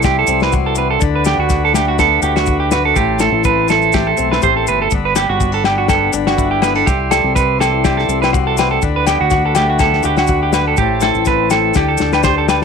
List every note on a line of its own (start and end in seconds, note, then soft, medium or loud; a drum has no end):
0.00 0.24 C2 loud
0.00 0.98 E3 medium
0.00 1.01 G3 medium
0.00 0.28 C4 medium
0.00 0.52 E4 medium
0.00 0.97 D5 medium
0.00 1.00 E5 medium
0.00 1.00 C6 medium
0.00 maracas medium
0.04 0.17 G4 medium
0.04 kick loud
0.04 snare medium
0.19 0.41 A4 medium
0.27 0.97 C2 medium
0.27 0.76 C4 medium
0.27 maracas loud
0.40 0.53 B4 medium
0.40 snare medium
0.40 maracas soft
0.52 0.98 F#4 medium
0.52 kick loud
0.52 maracas medium
0.66 0.77 A4 medium
0.75 0.99 C4 medium
0.75 0.90 B4 medium
0.75 maracas loud
0.91 1.01 A4 medium
0.99 1.36 D2 loud
0.99 2.95 D3 medium
0.99 2.95 D5 medium
0.99 kick loud
0.99 maracas medium
1.03 2.96 F#5 medium
1.03 2.96 B5 medium
1.16 1.26 B4 medium
1.25 1.98 B3 medium
1.25 1.38 G4 medium
1.25 snare medium
1.25 maracas loud
1.38 2.19 D2 loud
1.38 1.62 F#4 medium
1.49 kick loud
1.49 snare soft
1.49 maracas medium
1.65 1.75 A4 medium
1.73 2.93 A3 medium
1.73 1.87 G4 medium
1.73 snare medium
1.73 maracas loud
1.88 1.99 F#4 medium
1.99 2.96 B3 medium
1.99 2.22 A4 loud
1.99 kick loud
1.99 snare medium
1.99 maracas medium
2.22 2.92 D2 loud
2.22 2.47 F#4 medium
2.22 2.35 G4 medium
2.22 maracas loud
2.36 2.59 F#4 medium
2.36 snare medium
2.36 maracas soft
2.46 2.71 F#4 medium
2.46 kick medium
2.46 maracas medium
2.60 2.71 G4 medium
2.71 2.94 F#4 medium
2.71 2.85 B4 medium
2.71 snare medium
2.71 maracas loud
2.85 2.96 A4 medium
2.93 3.30 A1 loud
2.93 4.92 A2 medium
2.93 3.19 G4 loud
2.93 4.88 E5 medium
2.93 4.88 A5 medium
2.93 4.88 C6 medium
2.93 kick medium
2.93 maracas medium
3.19 3.92 A3 medium
3.19 3.44 A4 medium
3.19 snare medium
3.19 maracas medium
3.32 4.13 A1 loud
3.44 4.16 C4 medium
3.44 3.68 B4 loud
3.44 kick medium
3.44 maracas medium
3.68 4.88 E3 medium
3.68 3.93 A4 medium
3.68 snare medium
3.68 maracas loud
3.82 maracas soft
3.92 4.88 A3 medium
3.92 4.07 G4 loud
3.92 kick loud
3.92 snare medium
3.92 maracas medium
4.07 4.30 A4 medium
4.17 4.40 B1 medium
4.17 4.67 C4 medium
4.17 maracas loud
4.31 4.42 B4 medium
4.31 snare medium
4.42 4.65 A1 medium
4.42 4.89 G4 medium
4.42 4.56 C5 medium
4.42 kick loud
4.42 maracas medium
4.57 4.67 A4 medium
4.67 4.90 G1 medium
4.67 4.80 B4 medium
4.67 maracas medium
4.82 4.92 A4 medium
4.91 5.26 G1 loud
4.91 6.84 G2 medium
4.91 8.80 D5 medium
4.91 6.86 F#5 medium
4.91 6.86 B5 medium
4.91 kick loud
4.91 maracas medium
5.05 5.16 B4 medium
5.15 5.39 B3 medium
5.15 5.29 G4 medium
5.15 snare medium
5.15 low agogo medium
5.15 maracas loud
5.29 6.10 G1 loud
5.29 5.53 F#4 medium
5.40 5.52 B3 medium
5.40 kick medium
5.40 maracas medium
5.52 6.12 D4 medium
5.52 5.65 A4 medium
5.64 6.87 D3 medium
5.64 5.78 G4 medium
5.64 snare medium
5.64 low agogo medium
5.78 5.89 F#4 medium
5.88 6.61 B3 medium
5.88 6.13 A4 medium
5.88 kick loud
5.88 snare medium
5.88 low agogo medium
5.88 maracas medium
6.13 6.83 G1 medium
6.13 6.62 D4 medium
6.13 muted clean electric guitar stroke medium
6.13 maracas loud
6.27 6.50 F#4 medium
6.27 snare medium
6.27 low agogo medium
6.27 maracas soft
6.37 8.33 E4 medium
6.37 kick loud
6.37 maracas medium
6.51 6.62 G4 medium
6.62 6.75 B3 medium
6.62 6.75 B4 medium
6.62 snare medium
6.62 low agogo medium
6.62 maracas medium
6.75 6.87 D4 medium
6.75 6.86 A4 medium
6.86 7.21 C2 medium
6.86 7.10 G4 loud
6.86 8.80 E5 medium
6.86 8.80 C6 medium
6.86 muted nylon-string guitar stroke medium
6.86 kick medium
6.86 snare soft
6.86 maracas medium
7.11 7.83 G3 medium
7.11 7.34 A4 medium
7.11 snare medium
7.11 low agogo medium
7.11 maracas medium
7.24 8.05 C2 loud
7.36 7.59 B4 medium
7.36 muted nylon-string guitar stroke medium
7.36 kick medium
7.36 snare soft
7.36 maracas medium
7.59 8.79 E3 medium
7.59 7.84 A4 medium
7.59 snare medium
7.59 low agogo medium
7.59 maracas loud
7.84 8.82 G3 medium
7.84 7.97 G4 medium
7.84 kick medium
7.84 snare medium
7.84 low agogo medium
7.84 maracas medium
7.97 8.21 A4 medium
7.97 snare soft
8.08 8.78 C2 loud
8.08 8.57 C4 medium
8.08 maracas medium
8.22 8.33 B4 medium
8.22 snare medium
8.22 low agogo medium
8.22 maracas soft
8.33 8.79 F#4 medium
8.33 muted clean electric guitar stroke loud
8.33 kick loud
8.33 maracas medium
8.47 8.57 A4 medium
8.57 8.80 C4 medium
8.57 8.71 B4 medium
8.57 snare medium
8.57 low agogo medium
8.57 maracas loud
8.71 8.82 A4 medium
8.82 9.17 D2 loud
8.82 10.77 D3 medium
8.82 10.76 D5 medium
8.82 10.76 F#5 medium
8.82 10.76 B5 medium
8.82 kick loud
8.82 maracas medium
8.96 9.07 B4 medium
9.07 9.79 B3 medium
9.07 9.20 G4 medium
9.07 snare medium
9.07 low agogo medium
9.07 maracas medium
9.20 10.01 D2 loud
9.20 9.44 F#4 medium
9.30 10.02 F#4 medium
9.30 kick medium
9.30 snare soft
9.30 maracas medium
9.46 9.56 A4 medium
9.55 10.75 A3 medium
9.55 9.69 G4 medium
9.55 snare medium
9.55 low agogo medium
9.55 maracas loud
9.69 9.80 F#4 medium
9.79 10.78 B3 medium
9.79 10.03 A4 medium
9.79 kick loud
9.79 snare medium
9.79 low agogo medium
9.79 maracas medium
9.93 snare soft
10.03 10.74 D2 loud
10.03 10.28 F#4 medium
10.03 10.17 G4 medium
10.03 maracas loud
10.17 10.41 F#4 medium
10.17 snare medium
10.17 low agogo medium
10.17 maracas soft
10.27 10.53 F#4 medium
10.27 kick loud
10.27 maracas medium
10.43 10.53 G4 medium
10.53 10.75 F#4 medium
10.53 10.66 B4 medium
10.53 snare medium
10.53 low agogo medium
10.53 maracas medium
10.68 10.78 A4 medium
10.76 11.12 A1 loud
10.76 11.75 A2 medium
10.76 11.01 G4 loud
10.76 11.75 E5 medium
10.76 11.76 A5 medium
10.76 kick loud
10.76 maracas medium
10.81 11.76 C5 medium
11.01 11.72 A3 medium
11.01 11.25 A4 medium
11.01 snare medium
11.01 low agogo medium
11.01 maracas medium
11.15 11.71 A1 loud
11.15 maracas soft
11.25 11.73 C4 medium
11.25 11.50 B4 medium
11.25 kick loud
11.25 snare soft
11.25 maracas medium
11.50 11.73 E3 medium
11.50 11.74 A4 medium
11.50 snare medium
11.50 low agogo medium
11.50 maracas loud
11.74 11.98 D2 loud
11.74 12.64 D3 medium
11.74 11.89 G4 medium
11.74 12.64 A5 medium
11.74 kick loud
11.74 snare medium
11.74 low agogo medium
11.74 maracas medium
11.78 12.64 D5 medium
11.78 12.64 G5 medium
11.88 12.12 A4 medium
11.97 12.64 D2 medium
11.97 12.64 D4 medium
11.97 snare medium
11.97 maracas loud
12.12 12.24 B4 medium
12.12 snare medium
12.12 low agogo medium
12.12 maracas soft
12.23 12.64 G4 medium
12.23 12.37 C5 loud
12.23 kick loud
12.23 snare medium
12.23 maracas medium
12.38 12.49 A4 medium
12.48 12.64 G3 medium
12.48 12.62 B4 medium
12.48 snare loud
12.48 low agogo medium
12.48 maracas medium